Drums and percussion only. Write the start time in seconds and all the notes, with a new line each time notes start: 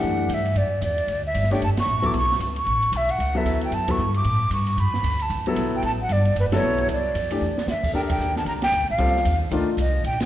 0.29 hi-hat pedal, ride
0.46 ride
0.56 ride
0.82 hi-hat pedal, ride
0.98 ride
1.08 ride
1.35 hi-hat pedal, ride
1.44 snare
1.51 snare, ride
1.62 ride
1.77 snare, ride
1.88 hi-hat pedal
2.03 kick, ride
2.14 ride
2.23 snare
2.32 snare
2.40 hi-hat pedal, ride
2.56 ride
2.66 ride
2.82 ride
2.93 hi-hat pedal, ride
3.09 ride
3.20 ride
3.46 hi-hat pedal, ride
3.61 ride
3.72 ride
3.88 kick, ride
3.98 hi-hat pedal
4.14 ride
4.24 ride
4.51 hi-hat pedal, ride
4.67 ride
4.78 ride
4.94 snare
5.04 hi-hat pedal, ride
5.19 ride
5.30 ride
5.46 ride
5.56 hi-hat pedal, ride
5.83 ride
6.09 hi-hat pedal, ride
6.25 ride
6.36 ride
6.52 snare, ride
6.62 hi-hat pedal
6.78 ride
6.89 ride
7.15 hi-hat pedal, ride
7.31 ride
7.58 snare
7.68 snare, hi-hat pedal
7.84 kick, crash
7.95 snare
8.10 kick, ride
8.20 hi-hat pedal
8.36 snare
8.46 ride
8.62 snare, ride
8.72 hi-hat pedal, ride
8.98 ride
9.08 snare
9.17 snare
9.25 hi-hat pedal, ride
9.51 ride
9.78 hi-hat pedal, ride
10.04 ride
10.20 snare, ride